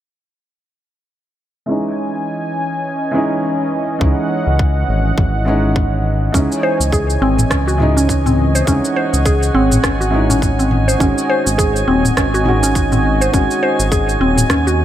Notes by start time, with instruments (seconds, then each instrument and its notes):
1.66 felt piano E3 G#3 C#4 D#4, analog synth pad E3 C#4 D#5 G#5
3.11 felt piano E3 G#3 C#4
3.15 felt piano D#4
3.99 analog synth bass C#2, felt piano E3 G#3 C#4, analog synth pad F#5, kick
4.03 felt piano D#4
4.47 analog synth bass C#2
4.59 kick
4.88 analog synth bass G#1
5.18 analog synth bass G#1, kick
5.45 felt piano E3 G#3 C#4 D#4
5.76 kick
6.32 analog synth bass C#2, felt piano E3 G#3 C#4 D#4, analog synth pad E3 C#5 D#5 G#5, synth pluck C#4, synth texture G#5, kick, shaker
6.52 shaker
6.63 synth pluck C5
6.80 analog synth bass C#2, shaker
6.92 synth pluck G#4, kick, shaker
7.10 shaker
7.22 analog synth bass G#1, synth pluck C4
7.38 mid tom, shaker
7.50 analog synth bass C#2, synth pluck C#4, kick, cross-stick, shaker
7.67 synth pluck F#4, shaker
7.78 felt piano E3 G#3 C#4 D#4, mid tom
7.97 synth pluck C#4, shaker
8.09 kick, shaker
8.26 synth pluck C4, mid tom, shaker
8.55 synth pluck C5, shaker
8.65 analog synth bass C#2, felt piano E3 G#3 C#4 D#4, synth pluck C#4, analog synth pad F#5, kick, shaker
8.85 shaker
8.96 synth pluck C5
9.13 analog synth bass C#2, shaker
9.26 synth pluck G#4, kick, shaker
9.43 shaker
9.54 analog synth bass G#1, synth pluck C4
9.71 mid tom, shaker
9.84 analog synth bass G#1, synth pluck C#4, kick, cross-stick, shaker
10.01 synth pluck F#4, shaker
10.10 felt piano E3 G#3 C#4 D#4
10.30 synth pluck C#4, mid tom, shaker
10.42 kick, shaker
10.59 synth pluck C4, shaker
10.71 mid tom
10.88 synth pluck C5, shaker
10.98 analog synth bass G#1, felt piano D#3 G#3 C#4, synth pluck C#4, analog synth pad F#4 D#5 G#5, kick, shaker
11.02 felt piano F#4
11.18 shaker
11.30 synth pluck C5
11.46 analog synth bass G#1, shaker
11.58 synth pluck G#4, kick, shaker
11.76 shaker
11.88 analog synth bass D#1, synth pluck C4
12.05 mid tom, shaker
12.17 analog synth bass G#1, synth pluck C#4, kick, cross-stick, shaker
12.34 synth pluck F#4, shaker
12.44 felt piano D#3 G#3 C#4, mid tom
12.48 felt piano F#4
12.63 synth pluck C#4, shaker
12.75 kick, shaker
12.92 synth pluck C4, mid tom, shaker
13.21 synth pluck C5, shaker
13.31 analog synth bass G#1, felt piano D#3 G#3 C#4 F#4, synth pluck C#4, kick, shaker
13.51 shaker
13.63 synth pluck C5
13.79 analog synth bass G#1, shaker
13.92 synth pluck G#4, kick, shaker
14.09 shaker
14.20 analog synth bass D#1, synth pluck C4
14.38 mid tom, shaker
14.50 analog synth bass D#2, synth pluck C#4, kick, cross-stick, shaker
14.67 synth pluck F#4, shaker